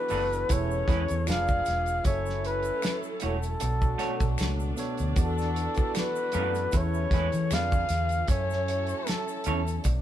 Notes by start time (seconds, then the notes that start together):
Already playing: E3 B3 D4 F#4 G#4 A4 B4 D5
0.08 F#1 E3 A3 B3 D4 F#4 A4 B4 D5, open hi-hat, shaker
0.33 closed hi-hat, shaker
0.48 E1 E3 A3 B3 C#4 E4 G#4 A4 B4, muted clean electric guitar stroke, kick, closed hi-hat, shaker
0.52 C#5
0.71 shaker
0.88 E2 G#3 C#4 E4 B4, kick, snare, closed hi-hat
1.08 E2, closed hi-hat, shaker
1.26 F1 F3 G#3 B3 D4 F4 G4 G#4 B4 D5 F5, finger snap, closed hi-hat, shaker
1.30 G#4, snare
1.48 kick, shaker
1.65 E1, snare, closed hi-hat, shaker
1.86 closed hi-hat, shaker
2.03 F#1 F#3 A3 C#4 E4 A4 C#5 E5 G#5, kick, closed hi-hat, shaker
2.26 snare, shaker
2.44 B4, closed hi-hat
2.63 closed hi-hat, shaker
2.82 finger snap, muted clean electric guitar stroke, snare, closed hi-hat, shaker
3.03 shaker
3.20 E1 A3 E4 F#4 C#5, closed hi-hat, shaker
3.26 A4
3.43 closed hi-hat, shaker
3.60 B1 F#3 A3 B3 D4 F#4, muted clean electric guitar stroke, closed hi-hat, shaker
3.81 kick, shaker
3.98 B2 A3 B3 D4 F#4 A4 C#5, snare, closed hi-hat
4.03 C#5
4.20 B1, kick, closed hi-hat, shaker
4.38 C#2, finger snap, snare, closed hi-hat, shaker
4.60 shaker
4.75 B2 B3 D4 A4 C#5, closed hi-hat, shaker
4.81 snare
4.97 D2, closed hi-hat, shaker
5.14 E2 E3 B3 D4 F#4 G#4 A4, kick, closed hi-hat, shaker
5.19 A4 D5
5.24 A4
5.38 snare, shaker
5.56 closed hi-hat
5.74 E3 B3 F#4, muted fingered electric bass stroke, kick, closed hi-hat, shaker
5.78 A4 D5
5.95 B4, finger snap, muted clean electric guitar stroke, snare, closed hi-hat, shaker
6.16 shaker
6.32 F#2 E3 A3 B3 D4 F#4 A4 B4, closed hi-hat, shaker
6.36 D5
6.55 closed hi-hat, shaker
6.72 E2 E3 A3 B3 C#4 E4 G#4 A4 B4 C#5, muted clean electric guitar stroke, kick, closed hi-hat, shaker
6.77 C#5
6.94 shaker
7.11 E2 G#3 C#4 E4 B4, kick, snare, closed hi-hat
7.32 E3, closed hi-hat, shaker
7.49 F2 D3 G#3 B3 D4 F4 G4 G#4 B4 F5, finger snap, closed hi-hat, shaker
7.53 D5, snare
7.59 G#4
7.72 kick, shaker
7.89 E2, snare, closed hi-hat, shaker
8.09 closed hi-hat, shaker
8.28 F#2 F#3 A3 C#4 E4 A4 C#5 G#5, kick, closed hi-hat, shaker
8.32 E5
8.50 snare, shaker
8.68 closed hi-hat
8.87 closed hi-hat, shaker
9.07 A4, finger snap, muted clean electric guitar stroke, snare, closed hi-hat, shaker
9.28 shaker
9.44 E2 C#4 E4 A4 C#5, closed hi-hat, shaker
9.67 closed hi-hat, shaker
9.83 B1 F#3 A3 B3 D4, muted clean electric guitar stroke, kick, closed hi-hat, shaker